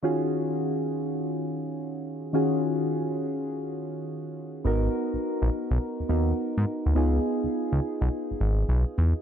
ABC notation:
X:1
M:4/4
L:1/16
Q:"Swing 16ths" 1/4=104
K:Ebm
V:1 name="Synth keys"
[E,DFGA]16 | [E,DFGA]16 | [CEGB]8- [CEGB]2 [CEGB]6 | [CEFA]16 |]
V:2 name="Analog synth bass" clef=bass
z16 | z16 | A,,,2 z B,,, z B,,, z C,, z E,, E,,2 z A,, z =D,, | D,,2 z D,, z D,, z C,, z A,,, A,,,2 C,, z _F,, z |]